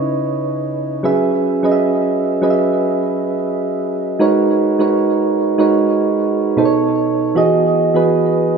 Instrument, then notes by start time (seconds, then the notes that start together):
synth keys
Already playing: C#3 C#4 D#4 E4 B4 C#5 D#5
1.03 F#3 C#4 G#4 B4 E5
1.63 F#3 C#4 G#4 B4 D#5
1.72 E5
2.42 F#3 C#4 G#4 B4 D#5
2.50 E5
4.19 G#3 D#4 F#4 A#4 B4 C#5
4.79 G#3 D#4 F#4 A#4 B4 C#5
5.58 G#3 D#4 F#4 A#4 B4 C#5
6.57 B2 B3 D#4 A4 C5
6.65 C#5
7.35 E3 B3 F#4 G#4 D#5
7.94 E3 B3 F#4 G#4 B4